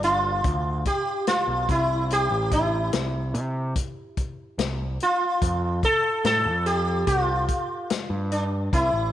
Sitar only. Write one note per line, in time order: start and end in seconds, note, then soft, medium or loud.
0.04 0.83 F4 medium
0.87 1.27 G4 medium
1.28 1.70 F4 medium
1.71 2.12 E4 medium
2.13 2.52 G4 loud
2.53 3.31 E4 medium
5.03 5.87 F4 medium
5.85 6.25 A4 loud
6.26 6.64 A4 loud
6.66 7.07 G4 medium
7.07 8.32 F4 medium
8.32 8.43 D4 medium
8.74 9.12 E4 medium